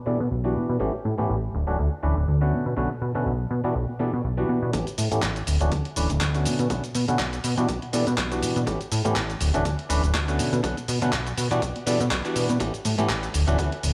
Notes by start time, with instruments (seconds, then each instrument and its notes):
0.06 analog synth bass B2, clav E3 G3 B3 D4 A4
0.20 analog synth bass B2
0.31 analog synth bass B1
0.44 clav E3 G3 B3 D4 F#4
0.56 analog synth bass B2
0.69 analog synth bass B2
0.79 analog synth bass A1, clav E3 A3 B3 C#4 G4
1.05 analog synth bass A2
1.18 analog synth bass A2, clav E3 A3 B3 C#4 G4
1.30 analog synth bass A1
1.54 analog synth bass D1
1.67 analog synth bass D1, clav E3 A3 C#4 D4 F#4
1.79 analog synth bass D2
2.03 analog synth bass D1, clav E3 A3 C#4 D4 B4
2.17 analog synth bass D1
2.28 analog synth bass D2
2.41 clav D3 A3 B3 C#4 F#4
2.52 analog synth bass B2
2.66 analog synth bass B2
2.77 analog synth bass B1, clav D3 A3 B3 C#4 F#4
2.91 analog synth bass B2
3.02 analog synth bass B2
3.15 analog synth bass B2, clav D3 A3 B3 C#4 F#4
3.26 analog synth bass B1
3.51 analog synth bass B2
3.64 analog synth bass B2, clav E3 G3 B3 D4 F#4
3.75 analog synth bass B1
3.89 analog synth bass B2
3.99 analog synth bass B2, clav E3 G3 B3 D4 A4
4.13 analog synth bass B2
4.24 analog synth bass B1
4.37 clav E3 G3 B3 D4 F#4
4.49 analog synth bass B2
4.62 analog synth bass B2
4.73 analog synth bass A1, clav E3 A3 B3 C#4 G4, kick, closed hi-hat, shaker
4.87 closed hi-hat, shaker
4.98 analog synth bass A2, open hi-hat, shaker
5.11 analog synth bass A2, clav E3 A3 B3 C#4 G4, closed hi-hat, shaker
5.22 analog synth bass A1, kick, clap, closed hi-hat, shaker
5.36 closed hi-hat, shaker
5.47 analog synth bass D1, open hi-hat, shaker
5.60 analog synth bass D1, clav E3 A3 C#4 D4 F#4, closed hi-hat, shaker
5.72 analog synth bass D2, kick, closed hi-hat, shaker
5.85 closed hi-hat
5.96 analog synth bass D1, clav E3 A3 C#4 D4 B4, open hi-hat, shaker
6.10 analog synth bass D1, closed hi-hat, shaker
6.21 analog synth bass D2, kick, clap, closed hi-hat, shaker
6.34 clav D3 A3 B3 C#4 F#4, closed hi-hat, shaker
6.45 analog synth bass B2, open hi-hat, shaker
6.59 analog synth bass B2, closed hi-hat, shaker
6.70 analog synth bass B1, clav D3 A3 B3 C#4 F#4, kick, closed hi-hat, shaker
6.84 analog synth bass B2, closed hi-hat, shaker
6.95 analog synth bass B2, open hi-hat, shaker
7.08 analog synth bass B2, clav D3 A3 B3 C#4 F#4, closed hi-hat, shaker
7.19 analog synth bass B1, kick, clap, closed hi-hat, shaker
7.33 closed hi-hat, shaker
7.44 analog synth bass B2, open hi-hat, shaker
7.57 analog synth bass B2, clav E3 G3 B3 D4 F#4, closed hi-hat, shaker
7.69 analog synth bass B1, kick, closed hi-hat, shaker
7.82 analog synth bass B2, closed hi-hat
7.93 analog synth bass B2, clav E3 G3 B3 D4 A4, open hi-hat, shaker
8.07 analog synth bass B2, closed hi-hat, shaker
8.18 analog synth bass B1, kick, clap, closed hi-hat, shaker
8.31 clav E3 G3 B3 D4 F#4, closed hi-hat, shaker
8.42 analog synth bass B2, open hi-hat, shaker
8.56 analog synth bass B2, closed hi-hat, shaker
8.66 analog synth bass A1, clav E3 A3 B3 C#4 G4, kick, closed hi-hat, shaker
8.81 closed hi-hat, shaker
8.92 analog synth bass A2, open hi-hat, shaker
9.04 analog synth bass A2, clav E3 A3 B3 C#4 G4, closed hi-hat, shaker
9.16 analog synth bass A1, kick, clap, closed hi-hat, shaker
9.30 closed hi-hat, shaker
9.41 analog synth bass D1, open hi-hat, shaker
9.54 analog synth bass D1, clav E3 A3 C#4 D4 F#4, closed hi-hat, shaker
9.65 analog synth bass D2, kick, closed hi-hat, shaker
9.79 closed hi-hat
9.89 analog synth bass D1, clav E3 A3 C#4 D4 B4, open hi-hat, shaker
10.04 analog synth bass D1, closed hi-hat, shaker
10.14 analog synth bass D2, kick, clap, closed hi-hat, shaker
10.28 clav D3 A3 B3 C#4 F#4, closed hi-hat, shaker
10.39 analog synth bass B2, open hi-hat, shaker
10.53 analog synth bass B2, closed hi-hat, shaker
10.63 analog synth bass B1, clav D3 A3 B3 C#4 F#4, kick, closed hi-hat, shaker
10.77 analog synth bass B2, closed hi-hat, shaker
10.88 analog synth bass B2, open hi-hat, shaker
11.02 analog synth bass B2, clav D3 A3 B3 C#4 F#4, closed hi-hat, shaker
11.13 analog synth bass B1, kick, clap, closed hi-hat, shaker
11.27 closed hi-hat, shaker
11.38 analog synth bass B2, open hi-hat, shaker
11.51 analog synth bass B2, clav E3 G3 B3 D4 F#4, closed hi-hat, shaker
11.62 analog synth bass B1, kick, closed hi-hat, shaker
11.76 analog synth bass B2, closed hi-hat
11.86 analog synth bass B2, clav E3 G3 B3 D4 A4, open hi-hat, shaker
12.00 analog synth bass B2, closed hi-hat, shaker
12.11 analog synth bass B1, kick, clap, closed hi-hat, shaker
12.24 clav E3 G3 B3 D4 F#4, closed hi-hat, shaker
12.36 analog synth bass B2, open hi-hat, shaker
12.49 analog synth bass B2, closed hi-hat, shaker
12.60 analog synth bass A1, clav E3 A3 B3 C#4 G4, kick, closed hi-hat, shaker
12.74 closed hi-hat, shaker
12.85 analog synth bass A2, open hi-hat, shaker
12.98 analog synth bass A2, clav E3 A3 B3 C#4 G4, closed hi-hat, shaker
13.09 analog synth bass A1, kick, clap, closed hi-hat, shaker
13.23 closed hi-hat, shaker
13.34 analog synth bass D1, open hi-hat, shaker
13.47 analog synth bass D1, clav E3 A3 C#4 D4 F#4, closed hi-hat, shaker
13.58 analog synth bass D2, clav E3 A3, kick, closed hi-hat, shaker
13.72 closed hi-hat
13.83 analog synth bass D1, open hi-hat, shaker